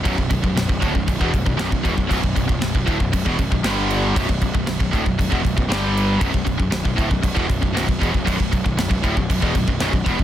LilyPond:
<<
  \new Staff \with { instrumentName = "Distorted electric guitar" } { \clef bass \time 4/4 \key b \minor \tempo 4 = 117 <b,, fis,>16 <b,, fis,>16 <b,, fis,>16 <b,, fis,>16 <b,, fis,>16 <b,, fis,>16 <d, a,>16 <b,, fis,>16 <b,, fis,>16 <e, b,>16 <b,, fis,>16 <b,, fis,>16 <b,, fis,>16 <b,, fis,>16 <e, b,>16 <b,, fis,>16 | <b,, fis,>16 <b,, fis,>16 <b,, fis,>16 <b,, fis,>16 <b,, fis,>16 <b,, fis,>16 <d, a,>16 <b,, fis,>16 <b,, fis,>16 <e, b,>16 <b,, fis,>16 <b,, fis,>16 <g, d g>4 | <b,, fis,>16 <b,, fis,>16 <b,, fis,>16 <b,, fis,>16 <b,, fis,>16 <b,, fis,>16 <d, a,>16 <b,, fis,>16 <b,, fis,>16 <e, b,>16 <b,, fis,>16 <b,, fis,>16 <g, d g>4 | <b,, fis,>16 <b,, fis,>16 <b,, fis,>16 <b,, fis,>16 <b,, fis,>16 <b,, fis,>16 <d, a,>16 <b,, fis,>16 <b,, fis,>16 <e, b,>16 <b,, fis,>16 <b,, fis,>16 <b,, fis,>16 <b,, fis,>16 <e, b,>16 <b,, fis,>16 |
<b,, fis,>16 <b,, fis,>16 <b,, fis,>16 <b,, fis,>16 <b,, fis,>16 <b,, fis,>16 <d, a,>16 <b,, fis,>16 <b,, fis,>16 <e, b,>16 <b,, fis,>16 <b,, fis,>16 <b,, fis,>16 <b,, fis,>16 <e, b,>16 <b,, fis,>16 | }
  \new Staff \with { instrumentName = "Overdriven electric guitar" } { \clef bass \time 4/4 \key b \minor <b,, fis,>16 <b,, fis,>16 <b,, fis,>16 <b,, fis,>16 <b,, fis,>16 <b,, fis,>16 <d, a,>16 <b,, fis,>16 <b,, fis,>16 <e, b,>16 <b,, fis,>16 <b,, fis,>16 <b,, fis,>16 <b,, fis,>16 <e, b,>16 <b,, fis,>16 | <b,, fis,>16 <b,, fis,>16 <b,, fis,>16 <b,, fis,>16 <b,, fis,>16 <b,, fis,>16 <d, a,>16 <b,, fis,>16 <b,, fis,>16 <e, b,>16 <b,, fis,>16 <b,, fis,>16 <g, d g>4 | <b,, fis,>16 <b,, fis,>16 <b,, fis,>16 <b,, fis,>16 <b,, fis,>16 <b,, fis,>16 <d, a,>16 <b,, fis,>16 <b,, fis,>16 <e, b,>16 <b,, fis,>16 <b,, fis,>16 <g, d g>4 | <b,, fis,>16 <b,, fis,>16 <b,, fis,>16 <b,, fis,>16 <b,, fis,>16 <b,, fis,>16 <d, a,>16 <b,, fis,>16 <b,, fis,>16 <e, b,>16 <b,, fis,>16 <b,, fis,>16 <b,, fis,>16 <b,, fis,>16 <e, b,>16 <b,, fis,>16 |
<b,, fis,>16 <b,, fis,>16 <b,, fis,>16 <b,, fis,>16 <b,, fis,>16 <b,, fis,>16 <d, a,>16 <b,, fis,>16 <b,, fis,>16 <e, b,>16 <b,, fis,>16 <b,, fis,>16 <b,, fis,>16 <b,, fis,>16 <e, b,>16 <b,, fis,>16 | }
  \new Staff \with { instrumentName = "Picked electric bass" } { \clef bass \time 4/4 \key b \minor b,,,16 b,,,16 b,,,16 b,,,16 b,,,16 b,,,16 d,,16 b,,,16 b,,,16 e,,16 b,,,16 b,,,16 b,,,16 b,,,16 e,,16 b,,,16 | b,,,16 b,,,16 b,,,16 b,,,16 b,,,16 b,,,16 d,,16 b,,,16 b,,,16 e,,16 b,,,16 b,,,16 g,,4 | b,,,16 b,,,16 b,,,16 b,,,16 b,,,16 b,,,16 d,,16 b,,,16 b,,,16 e,,16 b,,,16 b,,,16 g,,4 | b,,,16 b,,,16 b,,,16 b,,,16 b,,,16 b,,,16 d,,16 b,,,16 b,,,16 e,,16 b,,,16 b,,,16 b,,,16 b,,,16 e,,16 b,,,16 |
b,,,16 b,,,16 b,,,16 b,,,16 b,,,16 b,,,16 d,,16 b,,,16 b,,,16 e,,16 b,,,16 b,,,16 b,,,16 b,,,16 e,,16 b,,,16 | }
  \new DrumStaff \with { instrumentName = "Drums" } \drummode { \time 4/4 <cymc bd>16 bd16 <cymc bd>16 bd16 <cymc sn>16 bd16 <cymc bd>16 bd16 <cymc bd>16 bd16 <cymc bd>16 bd16 <cymc sn>16 bd16 <cymc bd>16 bd16 | <cymc bd>16 bd16 <cymc bd>16 bd16 <cymc sn>16 bd16 <cymc bd>16 bd16 <cymc bd>16 bd16 <cymc bd>16 bd16 <cymc sn>8 cymc8 | <cymc bd>16 bd16 <cymc bd>16 bd16 <cymc sn>16 bd16 <cymc bd>16 bd16 <cymc bd>16 bd16 <cymc bd>16 bd16 <cymc sn>8 cymc8 | <cymc bd>16 bd16 <cymc bd>16 bd16 <cymc sn>16 bd16 <cymc bd>16 bd16 <cymc bd>16 bd16 <cymc bd>16 bd16 <cymc sn>16 bd16 <cymc bd>16 bd16 |
<cymc bd>16 bd16 <cymc bd>16 bd16 <cymc sn>16 bd16 <cymc bd>16 bd16 <cymc bd>16 bd16 <cymc bd>16 bd16 <cymc sn>16 bd16 <cymc bd>16 bd16 | }
>>